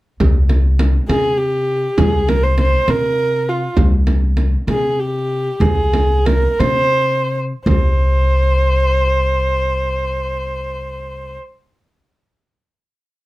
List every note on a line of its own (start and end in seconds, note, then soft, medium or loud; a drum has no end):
0.20 0.97 C2 medium
0.20 frame drum medium
0.49 frame drum medium
0.79 frame drum medium
1.08 1.86 C3 medium
1.08 1.39 G#4 medium
1.08 frame drum medium
1.37 1.99 G4 medium
1.97 2.75 C2 medium
1.97 2.30 G#4 medium
1.97 frame drum medium
2.28 2.45 A#4 medium
2.28 frame drum medium
2.43 2.58 C5 medium
2.58 2.91 C5 medium
2.58 frame drum medium
2.88 3.65 C3 medium
2.88 3.50 A#4 medium
2.88 frame drum medium
3.49 3.78 F4 medium
3.77 4.55 C2 medium
3.77 frame drum medium
4.07 frame drum medium
4.37 frame drum medium
4.67 5.47 C3 medium
4.67 5.01 G#4 medium
4.67 frame drum medium
4.99 5.63 G4 medium
5.60 6.45 C2 medium
5.60 6.27 G#4 medium
5.60 frame drum medium
5.94 frame drum medium
6.25 6.61 A#4 medium
6.25 frame drum medium
6.59 7.51 C3 medium
6.59 7.38 C5 medium
6.59 frame drum medium
7.65 11.37 C2 medium
7.65 11.36 C5 medium
7.65 frame drum medium